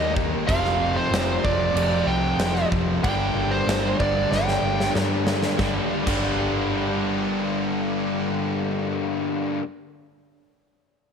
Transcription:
Already playing: fingered electric bass D#2, overdriven electric guitar D#3 A#3 D#4, distorted electric guitar D#3 G3 A#3 D#4, lead electric guitar D#5
0.17 kick
0.47 fingered electric bass F1, distorted electric guitar F2 C3 F3 A3 C4, lead electric guitar F5, kick, crash
0.65 snare
0.96 lead electric guitar C5
1.10 fingered electric bass F1, snare, crash
1.43 fingered electric bass F1, distorted electric guitar F2 C3 F3 A3 C4, lead electric guitar D5, kick
1.74 fingered electric bass F1, overdriven electric guitar F2 C3 F3, lead electric guitar D5, crash
2.06 fingered electric bass C2, lead electric guitar G5
2.37 fingered electric bass F1, snare, crash
2.56 snare
2.72 fingered electric bass F1, kick
3.03 fingered electric bass G1, distorted electric guitar G2 D3 G3 A#3 D4, lead electric guitar G5, kick, crash
3.35 fingered electric bass G1
3.51 lead electric guitar C5
3.67 fingered electric bass G1, snare, crash
3.99 fingered electric bass G1, distorted electric guitar G2 D3 G3 A#3 D4, lead electric guitar D5, kick
4.31 fingered electric bass G1, overdriven electric guitar G2 D3 G3, lead electric guitar G5, snare
4.48 snare
4.63 fingered electric bass G1
4.80 snare
4.95 fingered electric bass G2, snare
5.27 snare
5.42 snare
5.58 fingered electric bass G1, distorted electric guitar G2 D3 G3 A#3 D4, kick, snare
6.05 fingered electric bass G1, distorted electric guitar G2 D3 G3 A#3 D4, kick, crash

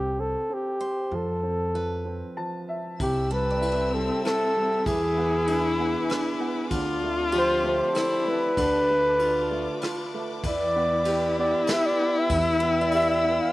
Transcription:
Already playing: upright bass C2, upright piano C4, flugelhorn G4
0.19 upright piano C4, flugelhorn A4
0.50 upright piano C4, flugelhorn G4
0.80 steel-string acoustic guitar C5
1.11 upright bass F2, upright piano F3, flugelhorn A4
1.43 upright piano C4
1.74 upright piano F3, steel-string acoustic guitar B4
2.05 upright piano C4
2.37 upright piano F3 A5
2.69 upright piano E5
3.00 upright bass C2, upright piano C3, viola C4, string section C4 E5 G5 E6, flugelhorn G4, kick, ride
3.31 upright piano G3, steel-string acoustic guitar A4, flugelhorn B4
3.50 steel-string acoustic guitar D5
3.61 upright piano E4, ride
3.72 steel-string acoustic guitar E5
3.93 upright piano G3, flugelhorn A4
4.24 upright piano E4, flugelhorn A4, cross-stick, ride
4.55 upright piano G3
4.86 upright bass E2, upright piano E3, viola E4, flugelhorn G#4, string section B4 G#5 D6, kick, ride
5.17 upright piano B3
5.48 upright piano D4, steel-string acoustic guitar G#4, ride
5.79 upright piano B3
6.08 upright piano D4, cross-stick, ride
6.40 upright piano B3
6.71 upright bass D2, upright piano D3, string section C4 D5 A5, viola F4, kick, ride
7.03 upright piano A3
7.32 upright piano F3, steel-string acoustic guitar G4, ride
7.37 flugelhorn C5
7.64 upright piano A3
7.68 flugelhorn C5
7.95 viola E4, upright piano A4, cross-stick, ride
8.27 upright piano A3, flugelhorn B4
8.57 upright bass D2, upright piano D3, viola D4, steel-string acoustic guitar A4, string section B4 D6, kick, ride
8.90 upright piano A3
9.19 upright piano D4, viola F4, ride
9.51 upright piano A3
9.81 upright piano F4, cross-stick, ride
10.14 upright piano A3
10.43 upright bass E2, upright piano E3, viola E4, string section E5 G5, kick, ride
10.47 flugelhorn D5
10.76 upright piano B3
11.05 steel-string acoustic guitar G4, upright piano G4, ride
11.39 upright piano B3, flugelhorn D5
11.67 upright piano B4, snare, ride
11.71 flugelhorn E5
11.86 flugelhorn D5
12.01 upright piano B3
12.18 flugelhorn E5
12.29 upright bass E2, upright piano E3, string section E6, kick, ride
12.60 upright piano B3, steel-string acoustic guitar B4
12.81 steel-string acoustic guitar D5
12.91 upright piano G4, flugelhorn E5, ride
13.02 steel-string acoustic guitar E5
13.10 flugelhorn E5
13.24 upright piano B3
13.41 flugelhorn F5

